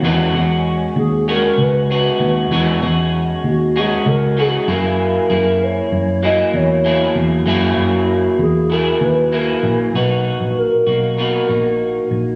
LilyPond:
<<
  \new Staff \with { instrumentName = "Soft synth lead" } { \time 4/4 \key b \major \tempo 4 = 97 r4. gis'8 ais'8 b'8 b'8. r16 | r4. fis'8 gis'8 ais'8 gis'8 ais'8~ | ais'4 cis''4 dis''8 cis''4 r8 | r4. gis'8 ais'8 b'8 ais'8. r16 |
b'4 ais'4 ais'4. r8 | }
  \new Staff \with { instrumentName = "Clean electric guitar" } { \time 4/4 \key b \major <e gis cis' fis'>8 <gis cis' fis'>4. <gis cis' fis'>4 <gis cis' fis'>4 | <e gis cis' fis'>8 <gis cis' fis'>4. <gis cis' fis'>4 <e gis cis' fis'>8 <fis ais e' gis'>8~ | <fis ais e' gis'>8 <ais e' gis'>4. <fis ais e' gis'>4 <fis ais e' gis'>4 | <fis ais e' gis'>2 <fis e' gis'>4 <fis ais e' gis'>4 |
<dis' fis'>4. <ais dis' fis'>8 <b, ais dis' fis'>8 <ais dis' fis'>4. | }
  \new Staff \with { instrumentName = "Fingered electric bass" } { \clef bass \time 4/4 \key b \major e,8 e,4 dis,4 cis,4 dis,8 | e,8 e,4 dis,4 cis,4 fis,8~ | fis,8 fis,4 fis,4 e,4 e,8 | fis,8 fis,4 e,4 dis,4 ais,,8 |
b,,8. ais,,8 r16 b,,4 ais,,4 ais,,8 | }
>>